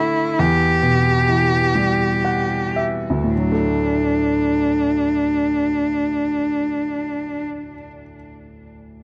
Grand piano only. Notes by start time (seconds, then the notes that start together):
Already playing: D3 A3
0.39 E2
0.82 B2
1.29 E3
1.75 G3
2.25 F#5
2.76 E5
3.10 D2
3.24 A2
3.38 F#3
3.52 A3